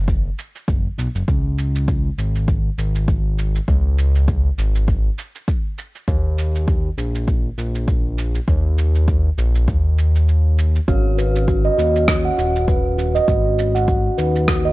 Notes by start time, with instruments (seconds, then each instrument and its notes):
Already playing: analog synth bass F#1
0.08 kick, cabasa
0.39 cabasa
0.55 cabasa
0.68 analog synth bass F#1, kick, cabasa
0.98 analog synth bass B1, cabasa
1.15 analog synth bass F#1, cabasa
1.28 analog synth bass C#2, kick, cabasa
1.58 cabasa
1.75 cabasa
1.88 kick, cabasa
2.18 analog synth bass G#1, cabasa
2.35 cabasa
2.48 kick, cabasa
2.78 analog synth bass G#1, cabasa
2.95 cabasa
3.08 kick, cabasa
3.39 cabasa
3.55 cabasa
3.68 analog synth bass C#2, kick, cabasa
3.98 cabasa
4.15 cabasa
4.28 kick, cabasa
4.58 analog synth bass G#1, cabasa
4.75 cabasa
4.88 kick, cabasa
5.18 cabasa
5.35 cabasa
5.48 kick, cabasa
5.78 cabasa
5.95 cabasa
6.08 analog synth bass D#2, kick, cabasa
6.38 cabasa
6.55 cabasa
6.68 kick, cabasa
6.98 analog synth bass A#1, cabasa
7.15 cabasa
7.28 kick, cabasa
7.58 analog synth bass A#1, cabasa
7.75 cabasa
7.88 kick, cabasa
8.18 cabasa
8.35 cabasa
8.48 analog synth bass D#2, kick, cabasa
8.78 cabasa
8.95 cabasa
9.08 kick, cabasa
9.38 analog synth bass A#1, cabasa
9.55 cabasa
9.68 analog synth bass D#2, kick, cabasa
9.98 cabasa
10.15 cabasa
10.28 cabasa
10.59 cabasa
10.76 cabasa
10.88 analog synth bass G#1, singing bowl C#4 C#5, steel tongue drum F#4, kick, cabasa
11.18 steel tongue drum B4, cabasa
11.36 cabasa
11.48 steel tongue drum F#4, kick, cabasa
11.65 steel tongue drum D#5
11.78 analog synth bass D#2, steel tongue drum F#4, cabasa
11.96 cabasa
12.08 kick, cross-stick, cabasa
12.25 steel tongue drum F#5
12.38 analog synth bass D#1, steel tongue drum F#4, cabasa
12.56 cabasa
12.68 steel tongue drum B4, kick, cabasa
12.98 steel tongue drum F#4, cabasa
13.15 steel tongue drum D#5, cabasa
13.28 analog synth bass G#1, steel tongue drum F#4, kick, cabasa
13.59 cabasa
13.75 steel tongue drum F#5, cabasa
13.88 steel tongue drum F#4, kick, cabasa
14.18 analog synth bass D#2, steel tongue drum B4, cabasa
14.36 cabasa
14.48 steel tongue drum F#4, kick, cross-stick, cabasa
14.65 steel tongue drum D#5